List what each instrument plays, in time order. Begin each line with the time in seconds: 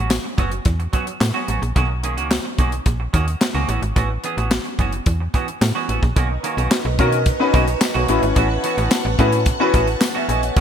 Already playing: fm bass A1
0.00 clean electric guitar F#3
0.10 snare, clap, tambourine
0.24 muted clean electric guitar stroke
0.38 fm bass F#1, clean electric guitar F#3 B3 C#4 F#4, kick, closed hi-hat
0.52 muted clean electric guitar stroke, closed hi-hat
0.65 fm bass E2, muted clean electric guitar stroke, kick, closed hi-hat
0.80 muted clean electric guitar stroke, closed hi-hat
0.93 clean electric guitar F#3 B3 C#4 F#4, kick, closed hi-hat
1.07 muted clean electric guitar stroke, closed hi-hat
1.20 fm bass A2, muted clean electric guitar stroke, snare, clap, tambourine
1.34 clean electric guitar F#3 B3 C#4 F#4
1.48 fm bass A1, clean electric guitar F#3 B3 C#4 F#4, closed hi-hat
1.62 fm bass A#1, muted clean electric guitar stroke, closed hi-hat
1.76 fm bass B1, clean electric guitar D#3 A#3 C#4 F#4, kick, closed hi-hat
1.89 muted clean electric guitar stroke
2.03 clean electric guitar D#3 A#3 C#4 G#4, closed hi-hat
2.17 fm bass C#2, clean electric guitar D#3 A#3 C#4 F#4, closed hi-hat
2.31 snare, clap, tambourine
2.45 muted clean electric guitar stroke
2.58 fm bass B1, clean electric guitar D#3 A#3 C#4 F#4, kick, closed hi-hat
2.72 muted clean electric guitar stroke, closed hi-hat
2.86 fm bass A#1, muted clean electric guitar stroke, kick, closed hi-hat
3.00 muted clean electric guitar stroke
3.13 fm bass D#2, clean electric guitar D#3 A#3 C#4 F#4, kick, closed hi-hat
3.27 muted clean electric guitar stroke, closed hi-hat
3.41 muted clean electric guitar stroke, snare, clap, tambourine
3.55 fm bass C#2, clean electric guitar D#3 A#3 C#4 F#4, closed hi-hat
3.68 fm bass A1, clean electric guitar E3 B3 C#4 F#4, closed hi-hat
3.82 fm bass G#1, muted clean electric guitar stroke, closed hi-hat
3.96 fm bass A1, clean electric guitar E3 B3 C#4 F#4, kick, closed hi-hat
4.10 muted clean electric guitar stroke
4.24 clean electric guitar E3 B3 C#4 G#4, closed hi-hat
4.37 fm bass A1, clean electric guitar E3 B3 C#4 F#4, closed hi-hat
4.51 snare, clap, tambourine
4.65 muted clean electric guitar stroke, closed hi-hat
4.79 fm bass F#1, clean electric guitar E3 B3 C#4 F#4, kick, closed hi-hat
4.93 muted clean electric guitar stroke, closed hi-hat
5.06 fm bass E2, muted clean electric guitar stroke, kick, closed hi-hat
5.20 muted clean electric guitar stroke
5.34 clean electric guitar E3 B3 C#4 F#4, kick, closed hi-hat
5.48 muted clean electric guitar stroke, closed hi-hat
5.61 fm bass A2, muted clean electric guitar stroke, snare, clap, tambourine
5.75 clean electric guitar E3 B3 C#4 F#4
5.89 fm bass A1, clean electric guitar E3 B3 C#4 F#4, closed hi-hat
6.02 fm bass A#1, muted clean electric guitar stroke, kick, closed hi-hat
6.16 fm bass B1, clean electric guitar D#3 A#3 C#4 F#4, string machine B4 D#5 A#5 C#6, kick, closed hi-hat
6.30 muted clean electric guitar stroke
6.43 clean electric guitar D#3 A#3 C#4 F#4, closed hi-hat
6.57 fm bass B1, clean electric guitar D#3 A#3 C#4 F#4, closed hi-hat
6.71 snare, clap, tambourine
6.85 fm bass B1, muted clean electric guitar stroke
6.99 fm bass B2, clean electric guitar D#3 A#3 C#4 F#4, grand piano C#4 D#4 F#4 A#4, kick, closed hi-hat
7.12 muted clean electric guitar stroke, closed hi-hat
7.26 kick, closed hi-hat
7.40 grand piano C#4 D#4 F#4 B4, muted clean electric guitar stroke
7.53 fm bass B1, clean electric guitar D#3 A#3 C#4 F#4, kick, closed hi-hat
7.67 muted clean electric guitar stroke, closed hi-hat
7.81 muted clean electric guitar stroke, snare, clap, tambourine
7.94 fm bass B1, clean electric guitar D#3 A#3 C#4 F#4, grand piano F#4 C#5, closed hi-hat
8.08 fm bass A1, clean electric guitar E3 B3 C#4 F#4, grand piano C#4 E4 F#4 B4, string machine F#5 A5, closed hi-hat
8.22 fm bass G#1, muted clean electric guitar stroke, closed hi-hat
8.35 fm bass A1, clean electric guitar E3 B3 C#4 F#4, kick, closed hi-hat
8.50 muted clean electric guitar stroke
8.63 clean electric guitar E3 B3 C#4 F#4, closed hi-hat
8.77 fm bass A1, clean electric guitar E3 B3 C#4 F#4, closed hi-hat
8.91 snare, clap, tambourine
9.05 fm bass A1, muted clean electric guitar stroke
9.19 fm bass A2, clean electric guitar E3 B3 C#4 F#4, grand piano C#4 E4 F#4 B4, kick, closed hi-hat
9.32 muted clean electric guitar stroke, closed hi-hat
9.46 muted clean electric guitar stroke, kick, closed hi-hat
9.60 clean electric guitar E3 B3 C#4 F#4, grand piano C#4 E4 F#4 B4
9.74 fm bass A1, clean electric guitar E3 B3 C#4 F#4, kick, closed hi-hat
9.88 muted clean electric guitar stroke, closed hi-hat
10.01 muted clean electric guitar stroke, snare, clap, tambourine
10.15 clean electric guitar E3 B3 C#4 F#4, grand piano B4 E5
10.29 fm bass A#1, clean electric guitar E3 B3 C#4 F#4, grand piano D#5 G#5, closed hi-hat
10.43 grand piano C#5 F#5, muted clean electric guitar stroke, closed hi-hat
10.57 fm bass B1, clean electric guitar D#3 A#3, string machine B4 D#5 A#5 C#6, kick, closed hi-hat